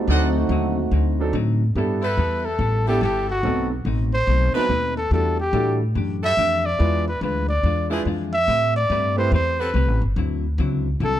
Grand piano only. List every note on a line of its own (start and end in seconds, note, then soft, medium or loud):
0.09 0.33 F#3 medium
0.09 0.33 C4 medium
0.09 0.33 D4 medium
0.09 0.33 D#4 medium
0.09 0.33 A4 medium
1.19 1.32 F#3 medium
1.19 1.33 C4 medium
1.19 1.33 D4 medium
1.19 1.33 D#4 medium
1.19 1.33 A4 medium
1.76 2.00 G3 medium
1.76 2.00 B3 medium
1.76 2.01 D4 medium
1.76 2.01 E4 medium
1.76 2.01 A4 medium
2.88 3.00 G3 medium
2.88 3.01 B3 medium
2.88 3.01 D4 medium
2.88 3.01 E4 medium
2.88 3.01 A4 medium
3.43 3.68 F#3 medium
3.43 3.68 B3 medium
3.43 3.68 C4 medium
3.43 3.68 D#4 medium
3.43 3.69 A4 medium
4.55 4.68 F#3 medium
4.55 4.68 B3 medium
4.55 4.69 C4 medium
4.55 4.69 D#4 medium
4.55 4.69 B4 medium
5.12 5.36 G3 medium
5.12 5.36 D4 soft
5.12 5.36 E4 medium
5.12 5.37 F#4 medium
5.12 5.37 A4 medium
5.53 5.77 G3 medium
5.53 5.78 D4 medium
5.53 5.78 E4 medium
5.53 5.78 F#4 medium
5.53 5.78 A4 medium
6.79 7.04 G#3 medium
6.79 7.04 D4 medium
6.79 7.04 E4 medium
6.79 7.04 F4 medium
6.79 7.04 B4 medium
7.90 8.04 G#3 medium
7.90 8.04 D4 medium
7.90 8.04 E4 medium
7.90 8.04 F4 medium
7.90 8.04 B4 medium
9.17 9.30 A3 medium
9.17 9.30 C4 medium
9.17 9.31 E4 medium
9.17 9.31 G4 medium
9.17 9.31 B4 medium